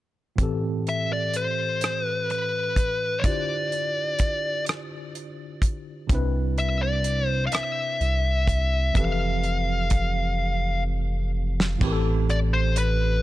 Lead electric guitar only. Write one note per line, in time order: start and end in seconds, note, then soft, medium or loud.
0.89 1.12 E5 medium
1.13 1.36 D5 medium
1.36 2.01 C5 medium
2.01 2.31 B4 medium
2.31 3.21 B4 medium
3.19 3.25 C#5 soft
3.26 4.64 D5 medium
6.59 6.82 E5 medium
6.82 7.27 D5 medium
7.27 7.42 C5 medium
7.47 7.53 F5 medium
7.53 8.96 E5 medium
8.97 10.83 F5 medium
12.30 12.37 D5 medium
12.54 12.75 C5 medium
12.78 13.22 B4 medium